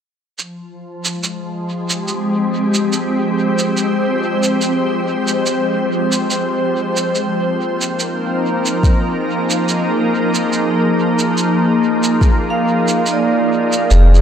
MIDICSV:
0, 0, Header, 1, 5, 480
1, 0, Start_track
1, 0, Tempo, 845070
1, 219, Time_signature, 4, 2, 24, 8
1, 8074, End_track
2, 0, Start_track
2, 0, Title_t, "Vibraphone"
2, 0, Program_c, 0, 11
2, 4161, Control_c, 0, 64, 127
2, 7102, Note_on_c, 0, 77, 48
2, 7455, Note_on_c, 0, 74, 48
2, 7563, Note_off_c, 0, 77, 0
2, 7897, Note_on_c, 0, 68, 60
2, 7906, Control_c, 0, 64, 0
2, 8009, Control_c, 0, 64, 127
2, 8074, Note_off_c, 0, 68, 0
2, 8074, Note_off_c, 0, 74, 0
2, 8074, End_track
3, 0, Start_track
3, 0, Title_t, "Ambient pad"
3, 0, Program_c, 1, 92
3, 218, Note_on_c, 1, 53, 60
3, 623, Note_on_c, 1, 56, 73
3, 956, Note_on_c, 1, 67, 72
3, 1074, Note_on_c, 1, 60, 62
3, 1622, Note_on_c, 1, 72, 68
3, 4058, Note_off_c, 1, 67, 0
3, 4059, Note_off_c, 1, 56, 0
3, 4325, Note_on_c, 1, 58, 72
3, 4441, Note_on_c, 1, 70, 74
3, 4485, Note_on_c, 1, 63, 83
3, 5052, Note_on_c, 1, 68, 73
3, 5608, Note_off_c, 1, 60, 0
3, 5608, Note_off_c, 1, 72, 0
3, 8011, Note_on_c, 1, 56, 63
3, 8074, Note_off_c, 1, 53, 0
3, 8074, Note_off_c, 1, 56, 0
3, 8074, Note_off_c, 1, 58, 0
3, 8074, Note_off_c, 1, 63, 0
3, 8074, Note_off_c, 1, 68, 0
3, 8074, Note_off_c, 1, 70, 0
3, 8074, End_track
4, 0, Start_track
4, 0, Title_t, "Sub bass"
4, 0, Program_c, 2, 38
4, 7899, Note_on_c, 2, 29, 93
4, 8074, Note_off_c, 2, 29, 0
4, 8074, End_track
5, 0, Start_track
5, 0, Title_t, "Drums"
5, 219, Note_on_c, 9, 69, 35
5, 276, Note_off_c, 9, 69, 0
5, 595, Note_on_c, 9, 69, 46
5, 652, Note_off_c, 9, 69, 0
5, 699, Note_on_c, 9, 69, 36
5, 756, Note_off_c, 9, 69, 0
5, 1078, Note_on_c, 9, 69, 47
5, 1134, Note_off_c, 9, 69, 0
5, 1180, Note_on_c, 9, 69, 36
5, 1237, Note_off_c, 9, 69, 0
5, 1557, Note_on_c, 9, 69, 45
5, 1614, Note_off_c, 9, 69, 0
5, 1661, Note_on_c, 9, 69, 38
5, 1718, Note_off_c, 9, 69, 0
5, 2037, Note_on_c, 9, 69, 47
5, 2093, Note_off_c, 9, 69, 0
5, 2141, Note_on_c, 9, 69, 36
5, 2197, Note_off_c, 9, 69, 0
5, 2517, Note_on_c, 9, 69, 49
5, 2574, Note_off_c, 9, 69, 0
5, 2620, Note_on_c, 9, 69, 39
5, 2677, Note_off_c, 9, 69, 0
5, 2997, Note_on_c, 9, 69, 47
5, 3054, Note_off_c, 9, 69, 0
5, 3101, Note_on_c, 9, 69, 38
5, 3158, Note_off_c, 9, 69, 0
5, 3476, Note_on_c, 9, 69, 47
5, 3533, Note_off_c, 9, 69, 0
5, 3580, Note_on_c, 9, 69, 39
5, 3637, Note_off_c, 9, 69, 0
5, 3957, Note_on_c, 9, 69, 49
5, 4014, Note_off_c, 9, 69, 0
5, 4061, Note_on_c, 9, 69, 36
5, 4118, Note_off_c, 9, 69, 0
5, 4437, Note_on_c, 9, 69, 46
5, 4494, Note_off_c, 9, 69, 0
5, 4540, Note_on_c, 9, 69, 37
5, 4597, Note_off_c, 9, 69, 0
5, 4917, Note_on_c, 9, 69, 47
5, 4974, Note_off_c, 9, 69, 0
5, 5018, Note_on_c, 9, 36, 102
5, 5021, Note_on_c, 9, 69, 37
5, 5075, Note_off_c, 9, 36, 0
5, 5077, Note_off_c, 9, 69, 0
5, 5396, Note_on_c, 9, 69, 48
5, 5453, Note_off_c, 9, 69, 0
5, 5500, Note_on_c, 9, 69, 39
5, 5557, Note_off_c, 9, 69, 0
5, 5876, Note_on_c, 9, 69, 48
5, 5933, Note_off_c, 9, 69, 0
5, 5979, Note_on_c, 9, 69, 37
5, 6036, Note_off_c, 9, 69, 0
5, 6355, Note_on_c, 9, 69, 47
5, 6412, Note_off_c, 9, 69, 0
5, 6460, Note_on_c, 9, 69, 37
5, 6517, Note_off_c, 9, 69, 0
5, 6835, Note_on_c, 9, 69, 47
5, 6892, Note_off_c, 9, 69, 0
5, 6937, Note_on_c, 9, 36, 100
5, 6939, Note_on_c, 9, 69, 37
5, 6994, Note_off_c, 9, 36, 0
5, 6996, Note_off_c, 9, 69, 0
5, 7316, Note_on_c, 9, 69, 46
5, 7373, Note_off_c, 9, 69, 0
5, 7419, Note_on_c, 9, 69, 39
5, 7476, Note_off_c, 9, 69, 0
5, 7796, Note_on_c, 9, 69, 48
5, 7853, Note_off_c, 9, 69, 0
5, 7899, Note_on_c, 9, 69, 49
5, 7956, Note_off_c, 9, 69, 0
5, 8035, Note_on_c, 9, 69, 27
5, 8074, Note_off_c, 9, 69, 0
5, 8074, End_track
0, 0, End_of_file